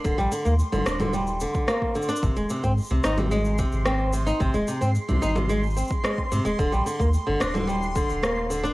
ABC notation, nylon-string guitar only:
X:1
M:4/4
L:1/16
Q:1/4=110
K:Eb
V:1 name="Nylon-string guitar" clef=bass
D, G, D, B, z D, D D, G,2 D,2 B,2 D, D | C, A, C, C z C, E C, A,2 C,2 C2 C, E | C, A, C, C z C, E C, A, z C z A, z C, A, | D, G, D, B, z D, D D, G,2 D,2 B,2 D, D |]